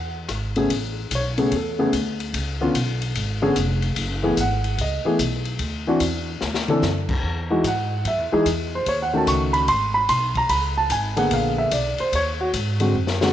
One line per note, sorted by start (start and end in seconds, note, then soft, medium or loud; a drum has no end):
0.00 0.26 E2 medium
0.29 0.67 G#1 medium
0.29 cross-stick medium
0.29 hi-hat pedal soft
0.29 ride medium
0.56 0.69 C#3 medium
0.56 0.69 A3 medium
0.56 0.69 B3 medium
0.56 0.70 G#4 medium
0.56 ride soft
0.70 1.10 A1 medium
0.70 kick soft
0.70 ride medium
1.11 1.50 B1 medium
1.11 kick soft
1.11 hi-hat pedal medium
1.11 ride medium
1.15 1.51 C#5 medium
1.38 1.51 C#3 medium
1.38 1.51 A3 medium
1.38 1.51 B3 medium
1.38 1.51 G#4 medium
1.38 ride soft
1.52 1.91 E2 medium
1.52 kick soft
1.52 ride medium
1.56 1.80 A4 medium
1.79 1.92 C#3 medium
1.79 1.92 A3 medium
1.79 1.92 B3 medium
1.79 1.92 G#4 medium
1.93 2.32 D2 medium
1.93 kick soft
1.93 hi-hat pedal soft
1.93 ride medium
2.20 ride soft
2.34 2.73 C#2 medium
2.34 kick soft
2.34 ride medium
2.61 2.73 D3 medium
2.61 2.73 B3 medium
2.61 2.74 C#4 medium
2.61 2.74 F4 medium
2.74 3.14 B1 medium
2.74 kick soft
2.74 hi-hat pedal medium
2.74 ride medium
3.02 ride soft
3.15 3.55 G#1 medium
3.15 kick soft
3.15 ride medium
3.42 3.55 D3 medium
3.42 3.55 B3 medium
3.42 3.55 C#4 medium
3.42 3.55 G#4 medium
3.56 3.95 F1 medium
3.56 kick soft
3.56 hi-hat pedal medium
3.56 ride medium
3.82 ride soft
3.96 4.36 F#1 medium
3.96 kick soft
3.96 ride medium
4.23 4.36 E3 medium
4.23 4.36 A3 medium
4.23 4.36 B3 medium
4.23 4.37 G#4 medium
4.37 4.77 G#1 medium
4.37 4.77 F#5 medium
4.37 kick soft
4.37 hi-hat pedal medium
4.37 ride medium
4.64 ride soft
4.78 5.03 C#2 medium
4.78 5.06 D#5 medium
4.78 kick soft
4.78 ride medium
5.04 5.18 E3 medium
5.04 5.18 A3 medium
5.04 5.18 B3 medium
5.04 5.18 G#4 medium
5.04 muted upright bass stroke soft
5.19 5.58 B1 medium
5.19 kick soft
5.19 hi-hat pedal medium
5.19 ride medium
5.45 ride soft
5.59 5.99 D2 medium
5.59 kick soft
5.59 ride medium
5.87 6.00 E3 medium
5.87 6.00 C4 medium
5.87 6.00 D4 medium
5.87 6.00 F#4 medium
6.00 6.40 E2 medium
6.00 kick soft
6.00 hi-hat pedal soft
6.00 ride medium
6.41 6.81 D2 medium
6.41 snare soft
6.54 snare medium
6.68 6.82 E3 medium
6.68 6.82 C4 medium
6.68 6.82 D4 medium
6.68 6.82 A4 medium
6.68 mid tom medium
6.82 7.22 F#2 medium
6.82 snare soft
6.82 hi-hat pedal soft
7.09 kick medium
7.09 crash medium
7.23 7.63 E2 medium
7.23 kick soft
7.50 7.63 E3 medium
7.50 7.63 G#3 medium
7.50 7.63 D#4 medium
7.50 7.63 F#4 medium
7.63 8.03 G#2 medium
7.63 8.04 F#5 medium
7.63 kick soft
7.63 hi-hat pedal medium
7.63 ride medium
8.05 8.18 F#2 medium
8.05 8.23 E5 medium
8.05 kick soft
8.05 ride medium
8.18 8.32 E2 medium
8.32 8.45 D#2 medium
8.32 8.45 E3 medium
8.32 8.45 G#3 medium
8.32 8.45 D#4 medium
8.32 8.45 G#4 medium
8.45 8.85 E2 medium
8.45 kick soft
8.45 hi-hat pedal soft
8.45 ride medium
8.75 8.88 C5 medium
8.86 9.26 D#2 medium
8.86 9.01 C#5 medium
8.86 kick soft
8.86 ride medium
9.02 9.15 F#5 medium
9.13 9.66 D#3 medium
9.13 9.66 A3 medium
9.13 9.66 C#4 medium
9.13 9.66 F#4 medium
9.13 9.29 A5 medium
9.27 9.67 C#2 medium
9.27 9.53 C#6 medium
9.27 kick soft
9.27 hi-hat pedal medium
9.27 ride medium
9.53 9.67 B5 medium
9.53 ride soft
9.68 10.08 G#1 medium
9.68 9.94 C6 loud
9.68 kick soft
9.68 ride medium
9.94 10.08 B5 medium
10.08 10.48 B1 medium
10.08 10.35 C6 loud
10.08 kick soft
10.08 hi-hat pedal soft
10.08 ride medium
10.35 10.50 A#5 medium
10.35 kick soft
10.35 ride soft
10.49 10.89 C#2 medium
10.49 10.76 B5 medium
10.49 kick soft
10.49 ride medium
10.77 10.91 A5 medium
10.90 11.30 G#1 medium
10.90 11.17 G#5 medium
10.90 kick soft
10.90 hi-hat pedal medium
10.90 ride medium
11.16 11.69 D3 medium
11.16 11.69 A#3 medium
11.16 11.70 B3 medium
11.16 11.70 G#4 medium
11.16 11.32 F#5 medium
11.16 ride soft
11.31 11.70 A#1 medium
11.31 11.58 F5 medium
11.31 kick soft
11.31 ride medium
11.58 11.72 E5 medium
11.71 11.96 B1 medium
11.71 11.98 D5 medium
11.71 kick soft
11.71 hi-hat pedal soft
11.71 ride medium
11.98 12.13 C5 medium
11.98 muted upright bass stroke soft
11.98 ride soft
12.12 12.52 D#2 medium
12.12 12.40 C#5 medium
12.12 kick soft
12.12 ride medium
12.41 12.49 F#4 medium
12.53 12.93 G#2 medium
12.53 kick soft
12.53 hi-hat pedal soft
12.53 ride medium
12.80 12.93 D3 medium
12.80 12.93 G#3 medium
12.80 12.94 C4 medium
12.80 12.94 F#4 medium
12.80 ride soft
12.94 13.33 F#2 medium
13.07 snare soft
13.21 13.33 D3 medium
13.21 13.33 G#3 medium
13.21 13.33 C4 medium
13.21 13.33 F#4 medium
13.21 snare medium